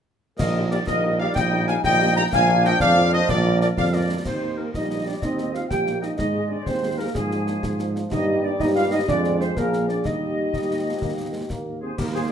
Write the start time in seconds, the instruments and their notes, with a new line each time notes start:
0.38 tuba A#1, trombone section G3 D#4, woodwind section A#4, trumpet section D#5, flute section D#5, concert bass drum, snare, crash
0.55 french horn section A#3 D#4 G4
0.71 french horn section A#3 D#4 G4, woodwind section A#4, trumpet section D5, flute section D5, snare
0.87 tuba A#1, woodwind section A#4, trumpet section D#5, flute section D#5, concert bass drum, snare
1.03 french horn section A#3 D#4 G4
1.20 french horn section A#3 D#4 G4, woodwind section D5, trumpet section F5, flute section F5
1.35 tuba A#1, woodwind section D#5, trumpet section G5, flute section G5, concert bass drum, snare
1.52 french horn section A#3 D#4 G4
1.68 french horn section A#3 D#4 G4, woodwind section F5, trumpet section G#5, flute section G#5, snare
1.84 tuba A#1, woodwind section D#5, flute section G5, trumpet section G5, concert bass drum, snare
2.01 french horn section A#3 D#4 G4
2.16 french horn section A#3 D#4 G4, woodwind section G5, flute section A#5, trumpet section A#5
2.31 tuba A#1, trombone section F3 D4, woodwind section F5, flute section G#5, trumpet section G#5, concert bass drum, snare, crash
2.49 french horn section A#3 D4 F4
2.64 french horn section A#3 D4 F4, woodwind section D#5, flute section G5, trumpet section G5, snare
2.80 tuba F2, woodwind section D5, trumpet section F5, flute section F5, concert bass drum, snare
2.98 french horn section A#3 D4 F4
3.13 french horn section A#3 D4 F4, woodwind section C5, flute section D#5, trumpet section D#5
3.29 tuba A#1, woodwind section A#4, flute section D5, trumpet section D5, concert bass drum, snare
3.45 french horn section A#3 D4 F4
3.61 french horn section A#3 D4 F4, woodwind section A#4, trumpet section D5, flute section D5, snare
3.77 tuba F2, woodwind section D5, flute section F5, trumpet section F5, concert bass drum, snare
3.94 french horn section A#3 D4 F4, woodwind section A#4, trumpet section D5, flute section D5
4.10 french horn section A#3 D4 F4
4.24 tuba D#2, trombone section D#3, euphonium C4, flute section C5, trumpet section C5, woodwind section C5, concert bass drum, snare, crash
4.42 french horn section A#3 D#4 G4
4.57 french horn section A#3 D#4 G4, euphonium A#3, flute section A#4, trumpet section A#4, woodwind section A#4
4.72 tuba A#1, trombone section G3, euphonium D#4, flute section D#5, trumpet section D#5, woodwind section D#5, concert bass drum, snare
4.90 french horn section A#3 D#4 G4
5.06 french horn section A#3 D#4 G4, euphonium D4, flute section D5, trumpet section D5, woodwind section D5
5.21 tuba D#2, trombone section C4, euphonium D#4, flute section D#5, trumpet section D#5, woodwind section D#5, concert bass drum, snare
5.38 french horn section A#3 D#4 G4, snare
5.53 french horn section A#3 D#4 G4, euphonium F4, flute section F5, trumpet section F5, woodwind section F5, snare
5.69 tuba A#1, trombone section A#3, euphonium G4, flute section G5, woodwind section G5, trumpet section G5, concert bass drum, snare
5.87 french horn section A#3 D#4 G4, snare
6.01 french horn section A#3 D#4 G4, euphonium D#4, flute section D#5, trumpet section D#5, woodwind section D#5, snare
6.17 tuba G#2, trombone section G#3, euphonium D#4, flute section D#5, woodwind section D#5, trumpet section D#5, concert bass drum, snare
6.35 french horn section C4 D#4 G#4
6.49 french horn section C4 D#4 G#4, euphonium D4, flute section D5, trumpet section D5, woodwind section D5
6.65 tuba D#2, euphonium C4, flute section C5, trumpet section C5, woodwind section C5, concert bass drum, snare
6.82 french horn section C4 D#4 G#4
6.98 euphonium A#3, french horn section C4 D#4 G#4, trumpet section A#4, flute section A#4, woodwind section A#4
7.14 tuba G#2, trombone section F3, euphonium G#3, trumpet section G#4, flute section G#4, woodwind section G#4, concert bass drum, snare
7.31 french horn section A#3 D4 F4, snare
7.47 french horn section A#3 D4 F4, snare
7.63 tuba G#2, concert bass drum, snare
7.79 french horn section A#3 D4 F4, snare
7.96 french horn section A#3 D4 F4, snare
8.11 tuba G2, trombone section G3, french horn section A#3 D#4 G4, euphonium D#4, trumpet section D#5, woodwind section D#5, flute section D#5, concert bass drum, snare, crash
8.44 euphonium D4, trumpet section D5, flute section D5, woodwind section D5
8.59 tuba G2, french horn section A#3 D#4 G4, euphonium D#4, flute section D#5, trumpet section D#5, woodwind section D#5, concert bass drum, snare
8.75 euphonium F4, flute section F5, trumpet section F5, woodwind section F5
8.91 euphonium D#4, flute section D#5, trumpet section D#5
8.95 woodwind section D#5
9.08 tuba F2, trombone section G#3, french horn section C4 F4 G#4, euphonium D4, flute section D5, trumpet section D5, woodwind section D5, concert bass drum, snare
9.24 snare
9.39 euphonium C4, flute section C5, trumpet section C5, woodwind section C5, snare
9.56 tuba A#1, trombone section F3, euphonium A#3, french horn section D4 F4 G#4, flute section A#4, trumpet section A#4, woodwind section A#4, concert bass drum, snare
9.73 snare
9.81 french horn section C4
9.88 euphonium D4, flute section D5, trumpet section D5, woodwind section D5, snare
10.04 tuba D#2, trombone section G3, french horn section A#3 D#4 G4, euphonium D#4, trumpet section D#5, flute section D#5, woodwind section D#5, concert bass drum, snare
10.54 tuba D#2, trombone section G3, concert bass drum, snare
10.86 trombone section F3
11.02 tuba D#2, trombone section A#3, concert bass drum, snare
11.34 trombone section G#3
11.50 tuba D#2, trombone section A#3, concert bass drum, snare
11.81 trombone section C4, woodwind section G#4, flute section G#4, trumpet section C5
11.97 tuba D#2, trombone section A#3, woodwind section G4, flute section G4, trumpet section A#4, concert bass drum, snare, crash
12.14 french horn section A#3 D#4 G4, flute section G#4, woodwind section G#4, trumpet section C5